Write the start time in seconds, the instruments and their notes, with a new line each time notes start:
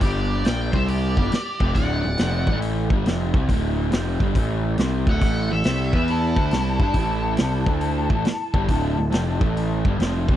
0.01 picked electric bass G1, overdriven electric guitar G2 D3 G3, lead electric guitar G4 D5, kick, open hi-hat
0.44 picked electric bass A#1, overdriven electric guitar A#2 F3 A#3, lead electric guitar D5 G5, snare, open hi-hat
0.72 picked electric bass C2, overdriven electric guitar C3 G3 C4, lead electric guitar C5 E5, kick
0.86 lead electric guitar G4 D5, open hi-hat
1.17 picked electric bass G1, overdriven electric guitar G2 D3 G3, kick
1.32 muted overdriven electric guitar stroke, muted picked electric bass stroke, snare, open hi-hat
1.60 picked electric bass F1, overdriven electric guitar F2 C3 F3, kick
1.74 picked electric bass D1, overdriven electric guitar D2, lead electric guitar D5 F#5, kick, open hi-hat
1.78 overdriven electric guitar A2 D3
2.05 picked electric bass D1, overdriven electric guitar D2 A2
2.18 picked electric bass F1, overdriven electric guitar F2 C3, snare, open hi-hat
2.22 overdriven electric guitar F3
2.47 picked electric bass A1, overdriven electric guitar A2, kick
2.52 overdriven electric guitar E3 A3
2.62 open hi-hat
2.90 picked electric bass G1, overdriven electric guitar G2 D3 G3, kick
3.06 picked electric bass F1, overdriven electric guitar F2 C3 F3, snare, open hi-hat
3.33 picked electric bass C2, overdriven electric guitar C3 G3 C4, kick
3.49 picked electric bass D1, overdriven electric guitar D2 A2 D3, kick, open hi-hat
3.92 picked electric bass F1, overdriven electric guitar F2 C3 F3, snare, open hi-hat
4.20 picked electric bass G1, overdriven electric guitar G2 D3 G3, kick
4.35 picked electric bass A1, overdriven electric guitar A2 E3 A3, kick, open hi-hat
4.78 picked electric bass C2, overdriven electric guitar C3 G3 C4, snare, open hi-hat
5.07 picked electric bass D1, overdriven electric guitar D2 A2 D3, lead electric guitar F#5, kick
5.11 lead electric guitar A4
5.21 picked electric bass A1, overdriven electric guitar A2 E3 A3, kick, open hi-hat
5.51 picked electric bass A1, overdriven electric guitar A2 E3, lead electric guitar A4 E5
5.64 picked electric bass C2, overdriven electric guitar C3 G3 C4, snare, open hi-hat
5.93 picked electric bass E2, overdriven electric guitar E3 B3 E4, lead electric guitar B4 E5, kick
6.08 lead electric guitar E4 A4, open hi-hat
6.36 picked electric bass D2, overdriven electric guitar D3 A3 D4, kick
6.51 picked electric bass C2, overdriven electric guitar C3 G3, snare, open hi-hat
6.55 overdriven electric guitar C4
6.79 picked electric bass G2, overdriven electric guitar G3 D4, kick
6.84 overdriven electric guitar G4
6.94 picked electric bass A1, kick, open hi-hat
6.98 overdriven electric guitar A2 E3 A3
7.37 picked electric bass C2, snare, open hi-hat
7.41 overdriven electric guitar C3 G3 C4
7.66 picked electric bass D2, overdriven electric guitar D3 A3 D4, kick
7.81 open hi-hat
8.10 picked electric bass A1, overdriven electric guitar A2 E3 A3, kick
8.25 muted overdriven electric guitar stroke, muted picked electric bass stroke, snare, open hi-hat
8.54 picked electric bass G1, overdriven electric guitar G2 D3 G3, kick
8.69 picked electric bass D1, overdriven electric guitar D2 A2 D3, kick, open hi-hat
8.98 picked electric bass D1, overdriven electric guitar D2 A2
9.11 picked electric bass F1, overdriven electric guitar F2 C3 F3, snare, open hi-hat
9.40 picked electric bass A1, overdriven electric guitar A2 E3 A3, kick
9.57 open hi-hat
9.85 picked electric bass G1, overdriven electric guitar G2 D3 G3, kick
9.99 picked electric bass F1, overdriven electric guitar F2 C3 F3, snare, open hi-hat
10.29 picked electric bass C2, overdriven electric guitar C3 G3 C4, kick